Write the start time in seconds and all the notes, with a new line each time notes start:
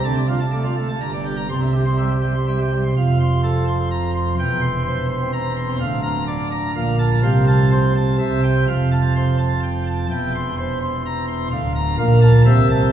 0.04 D2 D3 A5
0.16 D5
0.28 F4
0.40 A5
0.52 A3 D5
0.64 F4
0.77 A3
0.89 A5
1.01 G1 G2 A#5
1.13 D5
1.25 G4
1.37 A#5
1.49 C2 C3 C6
1.62 E5
1.74 G4
1.86 C6
1.98 G3 E5
2.11 G4
2.23 G3
2.35 C6
2.47 G3 E5
2.60 G4
2.72 G3
2.85 C6
2.97 F1 F2 F5
3.20 C6
3.44 A4
3.68 C6
3.91 A#5
4.15 C6
4.38 E1 E2 G5
4.61 C6
4.86 C5
5.09 C6
5.21 C4
5.33 A#5
5.56 C6
5.68 C4
5.80 D1 D2 F5
6.03 A#5
6.27 D5
6.51 A#5
6.75 A#1 A#2 F5
6.99 A5
7.23 C2 C3 F5
7.47 A5
7.71 C5
7.96 A5
8.19 C2 C3 E5
8.43 G5
8.68 F1 F2 F5
8.92 A5
9.15 C5
9.39 A5
9.63 G5
9.87 A5
10.11 E1 E2 G5
10.35 C6
10.58 C5
10.82 C6
11.06 A#5
11.28 C6
11.52 D1 D2 F5
11.76 A#5
11.98 A#1 A#2 F5
12.22 A5
12.46 C2 C3 E5
12.70 A5